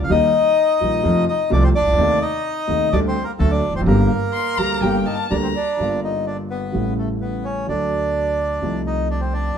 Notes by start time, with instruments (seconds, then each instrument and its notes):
0.04 grand piano D2, upright bass D2, bandoneon F5
0.09 grand piano D#2 D#3 G3 A#3 G4, upright bass D#2, bandoneon D#4 D#5
0.81 grand piano A#1 A#2 D#3 G3 A#3 G4, upright bass A#1
1.03 grand piano F2 C3 F3 A3 F4, upright bass F2
1.29 bandoneon D#4 D#5
1.50 grand piano C2 C3 F3 A3 F4, upright bass C2, bandoneon D4 D5
1.64 bandoneon C4 C5
1.75 bandoneon D4 D5
1.80 grand piano C2, upright bass C2
1.86 grand piano C#2, upright bass C#2
1.92 upright bass D2, grand piano D2
1.98 upright bass D#2, grand piano D#2 C3 D#3 A3 D#4
2.22 bandoneon D#4 D#5
2.68 grand piano D#2 C3 D#3 A3 D#4, upright bass D#2
2.92 upright bass D2, grand piano D2 D3 G3 A3 G4, bandoneon D4 D5
3.08 bandoneon C4 C5
3.24 bandoneon A#3 A#4
3.39 grand piano D2 D3 F#3 A3 F#4, upright bass D2, bandoneon A3 A4
3.51 bandoneon D4 D5
3.69 upright bass E1, grand piano E2
3.75 upright bass F1, grand piano F2, bandoneon C4 C5
3.81 upright bass F#1, grand piano F#2
3.86 upright bass G1, grand piano G1 G2 D3 G3 A#3 G4, bandoneon A#3 A#4
4.34 violin C6
4.58 upright bass D2, grand piano D2 D3 G3 A#3 G4, violin A#5
4.81 upright bass G1, grand piano G1 G2 D3 G3 A#3 G4, violin G5
5.06 bandoneon D#4, violin A5
5.30 grand piano D2 D3 G3 A#3 G4, upright bass D2, bandoneon D4, violin A#5
5.43 bandoneon C4
5.56 bandoneon D4
5.77 upright bass G1, grand piano G1 G2 D3 G3 A#3
5.82 grand piano F4
6.04 bandoneon D#4
6.26 bandoneon D4
6.50 bandoneon B3
6.72 grand piano A1 A2 C#3 G3 A3, upright bass A1
6.76 grand piano E4
6.98 bandoneon A3
7.21 bandoneon B3
7.44 bandoneon C#4
7.67 upright bass D2, grand piano D2 D3 F#3 A3, bandoneon D4
7.71 grand piano F#4
8.60 upright bass C2, grand piano C2 C3 F3 A3
8.65 grand piano D#4
8.87 bandoneon D#4
9.10 bandoneon D4
9.21 bandoneon C4
9.33 bandoneon D4
9.55 grand piano D3